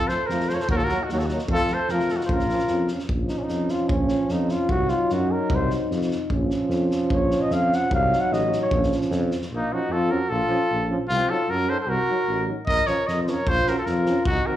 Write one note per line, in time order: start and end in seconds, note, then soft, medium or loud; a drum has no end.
0.00 0.10 F2 medium
0.00 0.10 F4 medium
0.08 0.18 F3 medium
0.08 0.19 A3 medium
0.08 0.33 A4 medium
0.08 0.28 C5 loud
0.08 snare soft
0.27 0.51 F2 medium
0.27 0.38 F3 medium
0.27 0.50 A#4 medium
0.27 snare soft
0.31 0.40 A3 medium
0.31 0.52 F4 medium
0.40 snare soft
0.49 0.59 F3 medium
0.49 0.58 A3 medium
0.49 0.56 A4 medium
0.49 0.56 C5 medium
0.49 snare soft
0.54 0.60 A#4 medium
0.54 0.62 C#5 medium
0.59 0.68 A4 medium
0.59 0.70 C5 medium
0.59 snare soft
0.69 0.91 D#2 medium
0.69 0.78 F#3 medium
0.69 0.80 A#3 medium
0.69 0.78 F#4 loud
0.69 0.78 A#4 loud
0.69 kick loud
0.77 0.85 F4 medium
0.77 0.85 A4 loud
0.84 1.03 F#4 loud
0.84 1.05 A#4 loud
0.89 0.98 F#3 medium
0.89 0.99 A#3 medium
0.89 snare soft
1.02 1.10 D#4 medium
1.02 1.11 F#4 medium
1.09 1.31 D#2 medium
1.09 1.19 F#3 medium
1.09 1.19 D#4 medium
1.09 1.20 F#4 medium
1.09 snare soft
1.13 1.21 A#3 medium
1.18 1.29 F4 medium
1.18 1.27 A4 medium
1.18 snare soft
1.26 1.42 D#4 medium
1.26 1.42 F#4 medium
1.26 snare soft
1.31 1.39 F#3 medium
1.31 1.41 A#3 medium
1.39 snare soft
1.48 1.71 F2 loud
1.48 1.58 F3 medium
1.48 1.74 F4 loud
1.48 kick medium
1.52 1.60 A3 medium
1.52 1.75 A4 loud
1.68 1.78 F3 medium
1.68 snare soft
1.72 1.80 A3 medium
1.72 1.93 A4 medium
1.72 1.92 C5 loud
1.88 2.11 F2 medium
1.88 2.00 F3 medium
1.88 2.16 F4 medium
1.88 2.13 A#4 loud
1.88 snare soft
1.94 2.01 A3 medium
1.99 snare soft
2.09 2.19 F3 medium
2.09 2.19 A3 medium
2.09 2.18 A4 medium
2.09 snare soft
2.16 2.25 D#4 medium
2.16 2.19 F4 medium
2.16 2.27 F#4 medium
2.21 2.26 F4 medium
2.21 snare soft
2.25 2.51 A#1 medium
2.25 2.37 F3 medium
2.25 2.33 A4 medium
2.25 2.34 C5 medium
2.29 2.40 C#4 medium
2.29 2.91 F4 loud
2.29 2.92 A#4 medium
2.29 kick medium
2.39 snare soft
2.49 2.58 F3 medium
2.49 2.60 C#4 medium
2.49 snare soft
2.58 snare soft
2.67 2.92 F2 medium
2.67 2.77 F3 medium
2.67 snare soft
2.71 2.79 C#4 medium
2.88 2.98 F3 medium
2.88 snare soft
2.93 3.00 C#4 medium
2.99 snare soft
3.09 3.32 A#1 medium
3.09 4.67 F3 medium
3.09 4.68 C#4 medium
3.09 kick medium
3.28 3.40 D#4 medium
3.28 snare soft
3.39 3.45 C#4 medium
3.43 3.72 D#4 medium
3.48 3.71 F2 medium
3.48 snare soft
3.69 3.90 F4 medium
3.69 snare soft
3.88 4.12 A#1 medium
3.88 4.33 C#4 medium
3.88 kick loud
4.08 snare soft
4.29 4.52 F2 loud
4.29 4.53 D#4 medium
4.29 snare soft
4.49 4.71 F4 medium
4.49 snare soft
4.69 4.93 C2 medium
4.69 6.12 F#3 medium
4.69 6.34 D#4 medium
4.69 4.91 F#4 loud
4.69 kick medium
4.88 5.14 F4 medium
4.88 snare soft
5.09 5.33 F#2 loud
5.09 5.34 F#4 medium
5.09 snare soft
5.32 5.56 A#4 medium
5.50 5.73 C2 loud
5.50 kick loud
5.55 5.74 C5 loud
5.70 snare soft
5.90 6.13 F2 loud
5.90 snare soft
6.01 snare soft
6.11 snare soft
6.30 6.52 A#1 loud
6.30 7.91 F3 medium
6.30 7.91 C#4 medium
6.30 kick medium
6.50 snare soft
6.69 6.92 F2 loud
6.69 snare soft
6.91 snare soft
7.10 7.33 A#1 loud
7.10 7.43 C#5 medium
7.10 kick medium
7.31 snare soft
7.41 7.54 D#5 medium
7.50 7.73 F2 loud
7.50 7.76 F5 medium
7.50 snare soft
7.73 7.93 F#5 loud
7.73 snare soft
7.90 8.13 C2 loud
7.90 8.73 F#3 medium
7.90 8.74 D#4 medium
7.90 kick loud
7.94 8.22 F5 loud
8.13 snare soft
8.20 8.34 F#5 loud
8.31 8.53 A1 loud
8.31 8.59 D#5 medium
8.31 snare soft
8.52 snare soft
8.61 8.97 C#5 medium
8.71 8.93 A#1 loud
8.71 9.35 F3 medium
8.71 9.36 C#4 medium
8.71 kick loud
8.83 snare soft
8.92 snare soft
9.01 snare soft
9.11 9.33 F2 loud
9.11 snare soft
9.31 snare soft
9.42 snare soft
9.51 9.62 A#1 medium
9.51 9.74 A#3 medium
9.56 9.75 D#4 loud
9.71 9.80 F3 medium
9.71 9.79 C#4 medium
9.71 9.95 D#4 medium
9.71 9.93 F#4 medium
9.89 10.11 F2 loud
9.89 10.12 A4 medium
9.94 10.13 F4 medium
10.09 10.18 F3 medium
10.09 10.17 C#4 medium
10.09 10.33 F#4 medium
10.09 10.31 A#4 loud
10.29 10.41 A#1 loud
10.29 10.91 F4 loud
10.29 10.89 A4 loud
10.48 10.56 F3 medium
10.48 10.58 C#4 medium
10.71 10.92 A#1 medium
10.89 10.97 F3 medium
10.89 10.97 C#4 medium
11.09 11.20 C2 loud
11.09 11.32 C4 medium
11.09 11.31 F4 loud
11.29 11.37 F#3 medium
11.29 11.38 D#4 medium
11.29 11.52 F4 medium
11.29 11.52 A4 loud
11.49 11.71 F#2 medium
11.49 11.70 F#4 medium
11.49 11.71 A#4 loud
11.68 11.76 F#3 medium
11.68 11.78 D#4 medium
11.68 11.80 A4 medium
11.68 11.79 C5 medium
11.80 11.89 A4 medium
11.80 11.91 C5 medium
11.87 11.98 C2 loud
11.87 12.48 F#4 loud
11.87 12.49 A#4 loud
12.09 12.18 F#3 medium
12.09 12.17 D#4 medium
12.27 12.49 A1 medium
12.46 12.55 F#3 medium
12.46 12.56 D#4 medium
12.67 12.80 A#1 medium
12.67 12.87 A#4 loud
12.67 12.89 D#5 loud
12.67 kick medium
12.86 12.95 F3 medium
12.86 12.96 C#4 medium
12.86 13.08 A#4 medium
12.86 13.08 C#5 loud
12.86 snare soft
13.07 13.31 F2 medium
13.07 13.23 A#4 medium
13.07 13.22 D#5 medium
13.07 snare soft
13.23 13.35 F3 medium
13.23 13.32 C5 medium
13.23 13.31 D#5 medium
13.27 13.35 C#4 medium
13.27 13.51 A#4 medium
13.27 13.50 C#5 loud
13.27 snare soft
13.47 13.58 A#1 medium
13.47 13.70 F4 loud
13.47 13.70 C5 loud
13.47 kick loud
13.65 13.73 F3 medium
13.65 13.75 C#4 medium
13.65 13.79 F#4 medium
13.65 13.78 A#4 medium
13.65 snare soft
13.78 13.89 F4 medium
13.78 13.87 A4 medium
13.85 14.09 F2 loud
13.85 14.28 F4 medium
13.85 14.26 A#4 medium
13.85 snare soft
14.05 14.13 F3 medium
14.05 14.16 C#4 medium
14.05 snare soft
14.25 14.38 C2 medium
14.25 14.49 D#4 medium
14.25 14.48 F#4 loud
14.25 kick loud
14.47 14.55 D#3 medium
14.47 14.56 C4 medium
14.47 14.56 F#4 medium
14.47 14.56 A#4 medium